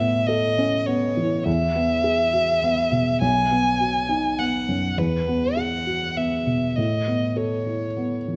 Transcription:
Already playing: felt piano A2, violin E5
0.00 felt piano B3
0.26 felt piano A4, violin D#5
0.58 felt piano C#4
0.86 felt piano B3, violin C#5
1.17 felt piano E3
1.44 felt piano E2, violin E5
1.75 felt piano B3
2.04 felt piano G#4
2.33 felt piano F#4
2.63 felt piano B3
2.92 felt piano B2
3.21 felt piano B1, violin G#5
3.51 felt piano B3
3.80 felt piano F#4
4.09 felt piano D#4
4.38 felt piano B3, violin F#5
4.68 felt piano F#2
4.98 felt piano E2, violin B4
5.28 felt piano B3
5.57 felt piano G#4, violin F#5
5.86 felt piano F#4
6.16 felt piano B3, violin E5
6.47 felt piano B2
6.76 felt piano A2, violin D#5
7.07 felt piano B3
7.36 felt piano A4, violin C#5
7.67 felt piano E4
7.97 felt piano B3
8.28 felt piano E3

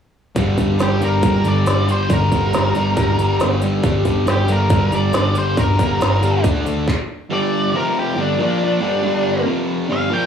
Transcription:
0.35 picked electric bass G1, distorted electric guitar G2 D3 G3, kick, open hi-hat
0.58 picked electric bass G1, distorted electric guitar G2 D3 G3, kick, open hi-hat
0.79 picked electric bass G1, distorted electric guitar G2 D3 G3, snare, open hi-hat
0.83 lead electric guitar G4
1.01 picked electric bass G1, distorted electric guitar G2 D3 G3, lead electric guitar A#4, open hi-hat
1.23 picked electric bass G1, distorted electric guitar G2 D3 G3, kick, open hi-hat
1.44 picked electric bass G1, distorted electric guitar G2 D3 G3, open hi-hat
1.48 lead electric guitar D5
1.66 picked electric bass G1, distorted electric guitar G2 D3 G3, snare, open hi-hat
1.89 distorted electric guitar G2 D3 G3, lead electric guitar C5, open hi-hat
2.09 picked electric bass G1, distorted electric guitar G2 D3 G3, lead electric guitar A#4, kick, open hi-hat
2.31 picked electric bass G1, distorted electric guitar G2 D3 G3, kick, open hi-hat
2.53 picked electric bass G1, distorted electric guitar G2 D3 G3, snare, open hi-hat
2.75 picked electric bass G1, distorted electric guitar G2 D3 G3, open hi-hat
2.97 picked electric bass G1, distorted electric guitar G2 D3 G3, kick, open hi-hat
3.18 picked electric bass G1, distorted electric guitar G2 D3 G3, open hi-hat
3.40 picked electric bass G1, distorted electric guitar G2 D3 G3, snare, open hi-hat
3.61 distorted electric guitar G2 D3 G3, open hi-hat
3.83 picked electric bass G1, distorted electric guitar G2 D3 G3, kick, open hi-hat
4.05 picked electric bass G1, distorted electric guitar G2 D3 G3, kick, open hi-hat
4.26 picked electric bass G1, distorted electric guitar G2 D3 G3, lead electric guitar G4, snare, open hi-hat
4.48 picked electric bass G1, distorted electric guitar G2 D3 G3, lead electric guitar A#4, open hi-hat
4.70 picked electric bass G1, distorted electric guitar G2 D3 G3, kick, open hi-hat
4.91 picked electric bass G1, distorted electric guitar G2 D3 G3, lead electric guitar D5, open hi-hat
5.13 picked electric bass G1, distorted electric guitar G2 D3 G3, snare, open hi-hat
5.35 distorted electric guitar G2 D3 G3, lead electric guitar C5, open hi-hat
5.57 picked electric bass G1, distorted electric guitar G2 D3 G3, lead electric guitar A#4, kick, open hi-hat
5.78 picked electric bass G1, distorted electric guitar G2 D3 G3, kick, open hi-hat
6.00 picked electric bass G1, distorted electric guitar G2 D3 G3, snare, open hi-hat
6.22 picked electric bass G1, distorted electric guitar G2 D3 G3, open hi-hat
6.43 picked electric bass D2, distorted electric guitar D3 A3 D4, kick, open hi-hat
6.65 picked electric bass D2, distorted electric guitar D3 A3 D4, open hi-hat
6.88 kick, clap
7.30 distorted electric guitar G2 D3 G3, lead electric guitar D5
7.74 distorted electric guitar F2 C3 F3, lead electric guitar A#4
7.99 lead electric guitar G4
8.17 distorted electric guitar G2 D3 G3
8.21 lead electric guitar D4
8.39 distorted electric guitar A#2 F3 A#3, lead electric guitar D4
8.64 lead electric guitar D4
8.80 distorted electric guitar G2 D3 G3
9.03 distorted electric guitar G2 D3 G3
9.45 distorted electric guitar F2 C3 F3
9.89 distorted electric guitar G2 D3 G3
9.93 lead electric guitar F5
10.10 distorted electric guitar A#2 F3 A#3, lead electric guitar G5

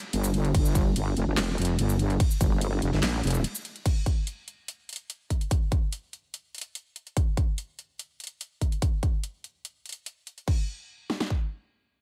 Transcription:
0.13 wobble bass G1, closed hi-hat, crash
0.24 shaker
0.34 closed hi-hat
0.45 closed hi-hat
0.55 wobble bass G1, kick, closed hi-hat, crash
0.65 shaker
0.75 kick, closed hi-hat, shaker
0.96 wobble bass G1, closed hi-hat, crash
1.17 wobble bass F1, closed hi-hat
1.27 wobble bass G1
1.37 wobble bass F1, snare, clap, closed hi-hat, crash
1.58 wobble bass F1, closed hi-hat
1.62 closed hi-hat
1.65 closed hi-hat
1.79 wobble bass G1, closed hi-hat, crash
1.89 shaker
1.99 closed hi-hat
2.10 closed hi-hat
2.20 kick, closed hi-hat, crash
2.31 shaker
2.41 wobble bass G1, kick, closed hi-hat, shaker
2.61 closed hi-hat, crash
2.82 wobble bass F1, closed hi-hat
2.93 wobble bass G1, snare
3.03 wobble bass A#1, snare, clap, closed hi-hat, crash
3.24 wobble bass F1, closed hi-hat
3.27 closed hi-hat
3.30 closed hi-hat, shaker
3.44 closed hi-hat, crash
3.55 shaker
3.65 closed hi-hat
3.76 closed hi-hat
3.86 kick, closed hi-hat, crash
4.06 kick, closed hi-hat
4.27 closed hi-hat
4.48 closed hi-hat
4.68 closed hi-hat
4.89 closed hi-hat
4.93 closed hi-hat
4.96 closed hi-hat
5.10 closed hi-hat
5.30 kick, closed hi-hat
5.41 closed hi-hat
5.51 kick, closed hi-hat
5.72 kick, closed hi-hat
5.92 closed hi-hat
6.13 closed hi-hat
6.34 closed hi-hat
6.55 closed hi-hat
6.58 closed hi-hat
6.61 closed hi-hat
6.75 closed hi-hat
6.96 closed hi-hat
7.07 closed hi-hat
7.17 kick, closed hi-hat
7.37 kick, closed hi-hat
7.58 closed hi-hat
7.79 closed hi-hat
7.99 closed hi-hat
8.20 closed hi-hat
8.24 closed hi-hat
8.27 closed hi-hat
8.41 closed hi-hat
8.61 kick, closed hi-hat
8.72 closed hi-hat
8.82 kick, closed hi-hat
9.03 kick, closed hi-hat
9.23 closed hi-hat
9.44 closed hi-hat
9.65 closed hi-hat
9.86 closed hi-hat
9.89 closed hi-hat
9.92 closed hi-hat
10.06 closed hi-hat
10.27 closed hi-hat
10.38 closed hi-hat
10.48 kick, crash
11.10 snare
11.20 snare
11.30 kick

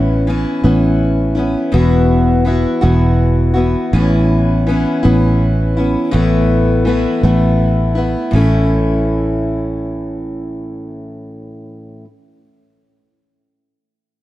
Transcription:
Already playing: fingered electric bass A1, steel-string acoustic guitar A2 E3 B3 C#4 E4
0.27 steel-string acoustic guitar E3 B3 C#4 E4
0.64 fingered electric bass A1, steel-string acoustic guitar A2 E3 B3 C#4 E4
1.35 steel-string acoustic guitar C#4 E4
1.39 steel-string acoustic guitar B3
1.72 fingered electric bass E1, steel-string acoustic guitar E2 B2 E3 B3 E4 F#4
2.45 steel-string acoustic guitar E3 B3 E4 F#4
2.81 fingered electric bass E1, steel-string acoustic guitar E2 B2 E3 B3 E4 F#4
3.54 steel-string acoustic guitar B3 E4 F#4
3.58 steel-string acoustic guitar E3
3.93 fingered electric bass A1, steel-string acoustic guitar A2 E3 B3 C#4 E4
4.67 steel-string acoustic guitar E3 B3 C#4 E4
5.03 fingered electric bass A1, steel-string acoustic guitar A2 E3 B3 C#4 E4
5.77 steel-string acoustic guitar B3 C#4 E4
6.11 fingered electric bass A1, steel-string acoustic guitar A2 E3 A3 B3 E4
6.85 steel-string acoustic guitar E3 A3 B3 E4
7.23 fingered electric bass A1, steel-string acoustic guitar A2 E3 A3 B3 E4
7.95 steel-string acoustic guitar A3 B3 E4
8.31 fingered electric bass A1, steel-string acoustic guitar A2 E3 A3
8.36 steel-string acoustic guitar C#4 E4

